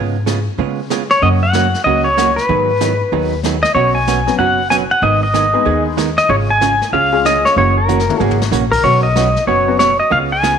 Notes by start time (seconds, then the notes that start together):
Already playing: G#2 C#3 G#3 B3 F4 G#4
0.26 C#3 G#3 B3 F4 G#4, snare, hi-hat pedal
0.58 C#3 G#3 B3 F4 G#4, brush sweep
0.90 C#3 G#3 B3 F4 G#4, snare, hi-hat pedal
1.10 C#5, snare
1.22 F#2 C#3 F#3 A#3 C#4 F#4 D#5, brush sweep
1.43 F#5
1.53 C#3 F#3 A#3 C#4 F#4, snare, hi-hat pedal
1.74 snare
1.84 C#2 C#3 F#3 A#3 C#4 F#4 D#5, brush sweep
2.04 C#5
2.17 C#3 F#3 A#3 C#4 F#4, snare, hi-hat pedal
2.36 B4, snare
2.49 G#2 D#3 F#3 B3 D#4 G#4, brush sweep
2.81 D#3 F#3 B3 D#4 G#4, snare, hi-hat pedal
3.12 D#2 D#3 F#3 B3 D#4 G#4, brush sweep
3.43 D#3 F#3 B3 D#4 G#4, snare, hi-hat pedal
3.63 D#5, snare
3.75 B1 B2 F#3 B3 C#4 F#4 C#5, brush sweep
3.95 G#5
4.07 B2 F#3 B3 C#4 F#4, snare, hi-hat pedal
4.27 F#3 B3 C#4 F#4, snare
4.39 F#1 B2 F#3 B3 C#4 F#4 F#5, brush sweep
4.70 B2 F#3 B3 C#4 F#4 G#5, snare, hi-hat pedal
4.91 F#5
5.02 G#1 D#3 G#3 B3 D#4 G#4 D#5, brush sweep
5.23 D#5
5.34 D#3 G#3 B3 D#4 G#4, snare, hi-hat pedal
5.53 G#3 B3 D#4 G#4
5.65 D#2 D#3 G#3 B3 D#4 G#4, brush sweep
5.97 D#3 G#3 B3 D#4 G#4, snare, hi-hat pedal
6.18 D#5, snare
6.29 G#1 C#3 G#3 C#4 F4 G#4 C#5, brush sweep
6.50 G#5
6.61 C#3 G#3 C#4 F4 G#4, snare, hi-hat pedal
6.82 snare
6.93 C#2 C#3 G#3 C#4 F4 G#4 F5, brush sweep
7.13 G#3 C#4 F4 G#4
7.25 C#3 G#3 C#4 F4 G#4 D#5, snare, hi-hat pedal
7.45 C#5, snare
7.56 F#1 C#3 E3 A#3 C#4 F#4 C#5, brush sweep
7.77 A#4
7.88 C#3 E3 A#3 C#4 F#4, hi-hat pedal, mid tom
7.99 snare
8.09 A#3 C#4 E4 F#4, mid tom
8.20 G#1 C#3 E3 A#3 C#4 F#4 G#4, floor tom
8.31 floor tom
8.41 snare
8.51 A#1 C#3 E3 A#3 C#4 F#4, snare, hi-hat pedal
8.72 A#4, kick, crash
8.84 B1 B2 F#3 B3 C#4 F#4 C#5, brush sweep
9.03 D#5
9.16 B2 F#3 B3 C#4 F#4, snare, hi-hat pedal
9.36 snare
9.47 F#1 B2 F#3 B3 C#4 F#4 C#5, brush sweep
9.68 F#3 B3 C#4 F#4
9.79 B2 F#3 B3 C#4 F#4 C#5, snare, hi-hat pedal
10.00 D#5
10.10 C#2 C#3 G#3 B3 F4 G#4 F5, brush sweep
10.32 G#5
10.43 C#3 G#3 B3 F4 G#4, snare, hi-hat pedal